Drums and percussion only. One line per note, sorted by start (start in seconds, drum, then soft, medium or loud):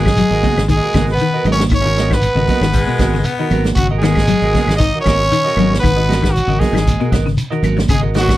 0.06 kick medium
0.06 snare medium
0.06 low conga medium
0.06 claves medium
0.17 closed hi-hat medium
0.17 shekere medium
0.31 closed hi-hat soft
0.43 kick medium
0.43 open hi-hat medium
0.43 high conga medium
0.43 low conga medium
0.43 shekere soft
0.57 snare medium
0.57 closed hi-hat soft
0.57 claves medium
0.68 kick medium
0.68 closed hi-hat medium
0.68 high conga medium
0.68 shekere medium
0.93 kick medium
0.93 snare medium
0.93 closed hi-hat soft
0.93 high conga medium
0.93 claves medium
0.93 shekere soft
1.07 snare soft
1.07 closed hi-hat soft
1.18 closed hi-hat medium
1.18 shekere medium
1.45 closed hi-hat medium
1.45 high conga medium
1.45 low conga medium
1.45 claves medium
1.45 shekere soft
1.59 snare medium
1.59 high conga medium
1.69 kick loud
1.69 closed hi-hat medium
1.69 claves medium
1.69 shekere medium
1.95 snare medium
1.95 closed hi-hat soft
1.95 high conga medium
1.95 shekere soft
2.11 kick medium
2.11 snare medium
2.11 claves medium
2.22 closed hi-hat medium
2.22 shekere medium
2.36 closed hi-hat soft
2.48 kick medium
2.48 open hi-hat medium
2.48 high conga medium
2.48 low conga medium
2.48 shekere soft
2.61 snare medium
2.61 closed hi-hat soft
2.61 claves medium
2.73 kick medium
2.73 closed hi-hat medium
2.73 shekere medium
2.87 closed hi-hat soft
2.99 kick medium
2.99 snare medium
2.99 closed hi-hat medium
2.99 high conga medium
2.99 claves medium
2.99 shekere soft
3.13 snare soft
3.13 closed hi-hat soft
3.24 closed hi-hat medium
3.24 shekere medium
3.39 closed hi-hat soft
3.51 closed hi-hat medium
3.51 high conga medium
3.51 low conga medium
3.51 claves medium
3.51 shekere soft
3.64 snare medium
3.64 closed hi-hat soft
3.64 high conga medium
3.76 kick loud
3.76 closed hi-hat medium
3.76 claves medium
3.76 shekere medium
4.02 snare medium
4.02 closed hi-hat medium
4.02 high conga medium
4.02 shekere soft
4.15 kick medium
4.15 snare medium
4.15 high conga medium
4.15 claves medium
4.27 closed hi-hat medium
4.27 shekere medium
4.42 closed hi-hat soft
4.54 kick medium
4.54 snare soft
4.54 open hi-hat medium
4.54 high conga medium
4.54 low conga medium
4.54 shekere soft
4.68 snare medium
4.68 closed hi-hat soft
4.68 claves medium
4.80 kick medium
4.80 closed hi-hat medium
4.80 shekere medium
5.06 kick medium
5.06 snare medium
5.06 closed hi-hat medium
5.06 high conga medium
5.06 claves medium
5.06 shekere soft
5.21 snare soft
5.21 closed hi-hat soft
5.32 closed hi-hat medium
5.32 shekere medium
5.47 snare soft
5.57 closed hi-hat medium
5.57 high conga medium
5.57 low conga medium
5.57 claves medium
5.57 shekere soft
5.72 snare medium
5.72 high conga medium
5.83 kick loud
5.83 snare soft
5.83 closed hi-hat medium
5.83 claves medium
5.83 shekere medium
6.09 snare medium
6.09 closed hi-hat soft
6.09 high conga medium
6.09 shekere soft
6.23 kick medium
6.23 snare medium
6.23 claves medium
6.36 closed hi-hat medium
6.36 shekere medium
6.49 closed hi-hat soft
6.60 kick medium
6.60 snare soft
6.60 open hi-hat medium
6.60 high conga medium
6.60 low conga medium
6.60 shekere soft
6.75 snare medium
6.75 closed hi-hat soft
6.75 claves medium
6.87 kick medium
6.87 closed hi-hat medium
6.87 high conga medium
6.87 shekere loud
7.00 closed hi-hat soft
7.12 kick medium
7.12 snare medium
7.12 closed hi-hat medium
7.12 high conga medium
7.12 claves medium
7.12 shekere soft
7.26 snare soft
7.26 closed hi-hat soft
7.37 closed hi-hat medium
7.37 shekere loud
7.52 closed hi-hat soft
7.63 closed hi-hat medium
7.63 high conga medium
7.63 low conga medium
7.63 claves medium
7.63 shekere soft
7.77 snare medium
7.77 closed hi-hat soft
7.77 high conga medium
7.88 kick loud
7.88 closed hi-hat medium
7.88 claves medium
7.88 shekere medium
8.14 snare medium
8.14 closed hi-hat soft
8.14 high conga medium
8.14 shekere soft
8.28 kick medium
8.28 snare medium
8.28 high conga medium
8.28 claves medium